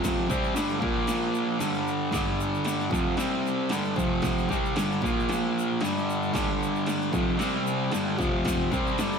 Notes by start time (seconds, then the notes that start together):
Already playing: F2 C3 F3
0.04 kick, snare, crash, shaker
0.29 C3 G3 C4, kick, shaker
0.44 shaker
0.55 G2 D3 G3, snare, crash, shaker
0.69 shaker
0.80 A#2 F3 A#3, kick
1.07 snare, crash, shaker
1.35 shaker
1.59 G2 D3 G3, snare, crash, shaker
1.74 shaker
1.88 shaker
2.12 G2 D3 G3, kick, snare, crash, shaker
2.41 shaker
2.55 shaker
2.65 snare, crash, shaker
2.81 shaker
2.91 F2 C3 F3, kick, shaker
3.17 C3 G3 C4, snare, crash, shaker
3.47 shaker
3.69 G2 D3 G3, snare, crash, shaker
3.85 shaker
3.96 F2 C3 F3, kick, shaker
4.22 kick, snare, crash, shaker
4.39 shaker
4.49 C3 G3 C4, kick, shaker
4.65 shaker
4.76 G2 D3 G3, snare, crash, shaker
4.92 shaker
5.02 A#2 F3 A#3, kick, shaker
5.20 shaker
5.29 snare, crash, shaker
5.59 shaker
5.81 G2 D3 G3, snare, crash, shaker
5.98 shaker
6.10 shaker
6.23 shaker
6.33 G2 D3 G3, kick, snare, crash, shaker
6.63 shaker
6.76 shaker
6.87 snare, crash, shaker
7.02 shaker
7.12 F2 C3 F3, kick, shaker
7.38 C3 G3 C4, snare, crash, shaker
7.67 shaker
7.92 G2 D3 G3, snare, crash, shaker
8.18 F2 C3 F3, kick, shaker
8.45 kick, snare, crash, shaker
8.72 C3 G3 C4, kick, shaker
8.87 shaker
8.98 G2 D3 G3, snare, crash, shaker
9.13 shaker